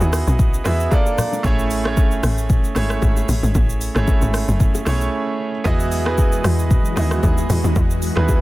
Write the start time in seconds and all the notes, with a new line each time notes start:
Already playing: B3 E4 F#4 G#4 D#5 F#5
0.01 D#2, shaker
0.13 cross-stick, open hi-hat, shaker
0.27 B1, shaker
0.39 kick, low conga, shaker
0.54 shaker
0.64 E2 B3 E4 F#4 G#4 E5, cross-stick, open hi-hat, low bongo, shaker
0.80 shaker
0.91 A#3 D4 F4 A4 D5, kick, high bongo, shaker
1.06 high bongo, shaker
1.18 cross-stick, open hi-hat, low conga, shaker
1.32 low bongo, shaker
1.43 A1 A3 C#4 E4 G#4 C#5, kick, low conga, shaker
1.59 shaker
1.71 open hi-hat, shaker
1.84 A3 C#4 E4 G#4 C#5, cross-stick
1.97 kick, high bongo, shaker
2.11 shaker
2.23 A1, cross-stick, open hi-hat, shaker
2.38 shaker
2.50 kick, low conga, shaker
2.64 shaker
2.75 G#1 A3 C#4 E4 G#4 C#5, cross-stick, open hi-hat, low bongo, shaker
2.90 cross-stick, shaker
3.02 G#1, kick, high bongo, shaker
3.17 high bongo, shaker
3.29 A1, open hi-hat, low conga, shaker
3.43 G#1, low bongo, shaker
3.55 A1, kick, low conga, shaker
3.69 shaker
3.81 open hi-hat, shaker
3.95 G#1 A3 C#4 E4 G#4 C#5, cross-stick, shaker
4.08 kick, high bongo, low bongo, shaker
4.22 G#1, shaker
4.34 cross-stick, open hi-hat, shaker
4.48 F#1, shaker
4.60 kick, low conga, shaker
4.75 high bongo, shaker
4.85 B1 A3 C#4 E4 G#4 C#5, cross-stick, open hi-hat, low bongo, shaker
5.01 shaker
5.64 E2 E3 G#3 B3 E4 F#4 G#4 D#5, kick, low conga, shaker
5.80 shaker
5.92 open hi-hat, shaker
6.05 B3 E4 F#4 G#4 B4, cross-stick
6.18 kick, high bongo, shaker
6.32 shaker
6.44 E2, cross-stick, open hi-hat, shaker
6.59 shaker
6.71 kick, low conga, shaker
6.85 shaker
6.96 D#2 B3 E4 F#4 G#4 D#5, cross-stick, open hi-hat, low bongo, shaker
7.11 cross-stick, shaker
7.23 D#2, kick, high bongo, shaker
7.38 high bongo, shaker
7.50 E2, open hi-hat, low conga, shaker
7.64 D#2, low bongo, shaker
7.76 E2, kick, low conga, shaker
7.91 shaker
8.02 open hi-hat, shaker
8.16 D#2 B3 E4 F#4 G#4 B4, cross-stick
8.29 kick, high bongo, shaker